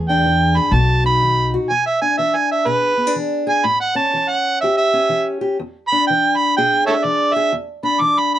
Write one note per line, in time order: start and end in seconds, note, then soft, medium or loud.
0.00 0.21 E2 medium
0.00 0.57 E2 medium
0.00 0.56 G#4 medium
0.09 0.72 D4 medium
0.09 0.59 G5 medium
0.26 0.70 E3 medium
0.57 0.72 G#4 medium
0.57 0.75 B5 medium
0.71 1.55 B1 medium
0.71 1.18 B2 medium
0.71 1.53 F#4 medium
0.71 1.05 A5 medium
1.04 1.68 D#4 medium
1.04 1.53 B5 medium
1.23 1.67 D#3 medium
1.54 1.69 F#4 medium
1.70 2.15 E2 medium
1.70 1.86 G#5 loud
1.86 2.01 E5 medium
2.01 2.97 D4 soft
2.01 2.17 G#5 medium
2.18 2.64 E3 medium
2.18 2.37 E5 medium
2.35 2.51 G#5 medium
2.52 2.69 E5 medium
2.66 3.11 B2 medium
2.66 3.46 G#4 medium
2.66 3.14 B4 medium
2.97 3.07 B3 medium
3.07 3.64 D4 soft
3.16 3.61 E3 medium
3.47 3.62 G#4 medium
3.47 3.67 G#5 medium
3.64 4.09 A2 medium
3.64 3.80 B5 medium
3.81 3.96 F#5 medium
3.95 4.92 C#4 medium
3.95 4.30 A5 medium
4.14 4.58 E3 medium
4.28 4.60 F#5 medium
4.61 5.07 E2 medium
4.61 5.40 G4 medium
4.61 4.77 E5 medium
4.77 5.25 E5 medium
4.93 5.57 C#4 medium
5.09 5.55 E3 medium
5.41 5.57 G4 medium
5.59 6.04 E2 medium
5.88 6.06 B5 loud
5.92 6.86 D4 medium
6.07 6.54 E3 medium
6.07 6.38 G5 medium
6.36 6.54 B5 medium
6.57 7.02 B2 medium
6.57 7.35 G#4 medium
6.57 6.86 G5 medium
6.86 7.51 D4 medium
6.86 6.93 A4 medium
6.86 6.95 C#5 medium
6.86 7.06 E5 medium
7.04 7.49 E3 medium
7.04 7.35 D5 medium
7.34 7.51 G#4 medium
7.34 7.52 E5 loud
7.52 7.98 E2 medium
7.83 8.39 D4 medium
7.83 8.02 B5 medium
8.01 8.39 E3 medium
8.01 8.20 D6 medium
8.18 8.34 B5 medium
8.34 8.39 B5 medium